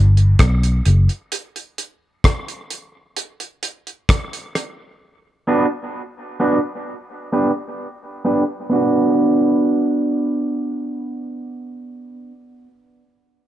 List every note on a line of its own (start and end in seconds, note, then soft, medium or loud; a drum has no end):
0.00 0.34 G1 medium
0.17 closed hi-hat soft
0.39 0.80 B1 medium
0.39 kick loud
0.39 cross-stick loud
0.39 closed hi-hat loud
0.63 closed hi-hat medium
0.85 1.07 F#1 medium
0.85 closed hi-hat medium
1.09 closed hi-hat soft
1.32 closed hi-hat medium
1.56 closed hi-hat soft
1.78 closed hi-hat medium
2.24 kick loud
2.24 cross-stick loud
2.24 closed hi-hat medium
2.48 closed hi-hat soft
2.70 closed hi-hat medium
3.17 closed hi-hat medium
3.40 closed hi-hat medium
3.63 closed hi-hat medium
3.87 closed hi-hat soft
4.09 kick loud
4.09 cross-stick loud
4.09 closed hi-hat loud
4.33 closed hi-hat soft
4.55 cross-stick medium
4.55 closed hi-hat medium
5.47 5.65 B3 medium
5.47 5.65 D4 medium
5.47 5.65 F#4 medium
5.47 5.66 B4 medium
6.40 6.57 B3 medium
6.40 6.58 D4 medium
6.40 6.58 F#4 medium
6.40 6.58 B4 medium
7.33 7.50 B3 medium
7.33 7.50 D4 medium
7.33 7.50 G4 medium
7.33 7.50 B4 medium
8.25 8.42 B3 medium
8.25 8.42 D4 medium
8.25 8.43 G4 medium
8.25 8.43 B4 loud
8.70 12.31 B3 medium
8.70 12.33 D4 medium
8.70 12.35 F#4 medium
8.74 12.36 B4 medium